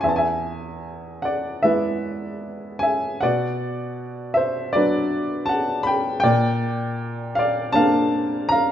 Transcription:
0.01 E2 E5 G#5
0.09 A5
0.16 E5 G#5
1.22 D5 F#5
1.63 G#3 B3 E4 B4 E5
2.79 E5 G#5
3.21 B2 D5 F#5
4.34 C5 E5
4.73 F#3 B3 D4 B4 D5
5.46 F#5 A5
5.83 G5 B5
6.20 A#2 D5 G5
7.35 D5 F5
7.72 A#3 C4 D4 F5 A5
8.49 F5 A#5

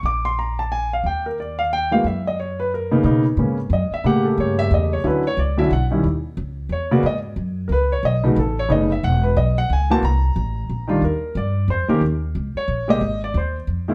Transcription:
0.03 A#1 D6
0.25 C6
0.39 A#5
0.59 A5
0.72 G#5
0.93 F5
1.04 D#2 G5
1.26 A#4
1.40 D5
1.59 F5
1.73 G5
1.91 E3 G#3 A#3 F#4 F5
2.04 F#2 E5
2.27 D#5
2.40 C#5
2.60 B4
2.74 A#4
2.91 C#3 A#3 B3 D#4
3.04 B2 C#3 A#3 B3 D#4
3.37 G#2 C#3 A#3 B3 C#4
3.70 F#2 D#5
3.91 E5, muted upright bass stroke
4.04 A2 C#3 A3 A#3 G4 F#5
4.25 A4
4.38 G2 C#5
4.59 E5
4.71 E2 D#5
4.93 C#5
5.04 D2 D3 F#3 C#4 E4 B4
5.27 C#5
5.37 C#2 D5
5.57 D3 F#3 C#4 E4 E5
5.71 B1 F#5
5.91 D#3 G3 C#4 E4
6.04 D#2
6.37 C#2
6.69 E2 C#5
6.91 C#3 A#3 B3 F#4 D5
7.03 G#2 D#5
7.36 F#2
7.68 C#2 A#4
7.72 B4
7.92 C#5
8.03 B1 D#5
8.24 C#3 A3 B3 D#4 F#4
8.36 A1 A4
8.59 C#5
8.69 F#1 C#3 A3 B3 D#4 D#5
8.92 E5
9.03 E1 F#5
9.23 B4
9.36 B1 D#5
9.58 F#5
9.70 C#2 G#5
9.90 E3 A#3 C4 F#4 A5
10.03 C2 A#5
10.36 A1
10.69 A#1
10.88 D#3 G3 D4 F4
11.02 D#2 A#4
11.35 G2 D5
11.68 F2 C5
11.88 D#3 A#3 C#4 G4 A#4, muted upright bass stroke
12.01 D#2
12.35 C#2
12.55 C#5, muted upright bass stroke
12.68 A#1
12.88 C3 G#3 A#3 G4 D#5
13.01 G#1
13.24 D5
13.34 D#2 C5
13.67 F2
13.88 D#3 G#3 A#3 E4

